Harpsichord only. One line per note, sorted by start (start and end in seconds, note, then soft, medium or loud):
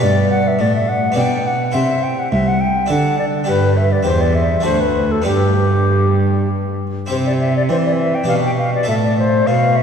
0.00 0.55 G2 soft
0.00 1.11 B3 soft
0.00 1.12 G4 soft
0.00 1.12 D5 soft
0.59 1.13 A2 soft
1.12 1.70 B3 soft
1.12 1.71 D4 soft
1.12 1.72 D5 soft
1.17 1.70 B2 soft
1.72 2.28 C3 soft
1.72 2.85 E4 soft
1.72 2.85 C5 soft
2.32 2.86 C2 soft
2.86 3.43 D3 soft
2.86 3.43 D4 soft
2.86 3.45 A4 soft
3.44 4.02 G2 soft
3.44 4.02 D4 soft
3.44 4.03 G4 soft
4.03 4.61 E2 soft
4.03 4.62 C4 soft
4.03 4.63 G4 soft
4.60 5.22 A3 soft
4.60 5.22 D4 soft
4.60 5.24 F#4 soft
4.65 5.22 D2 soft
5.22 7.05 B3 soft
5.22 7.05 D4 soft
5.22 7.06 G4 soft
5.26 6.87 G2 soft
7.06 8.23 C4 soft
7.06 8.23 E4 soft
7.06 8.24 G4 soft
7.11 7.66 C3 soft
7.69 8.24 E3 soft
8.24 8.84 D4 soft
8.24 8.84 G4 soft
8.28 8.84 B2 soft
8.83 9.83 E4 soft
8.83 9.83 A4 soft
8.88 9.43 A2 soft
9.48 9.83 B2 soft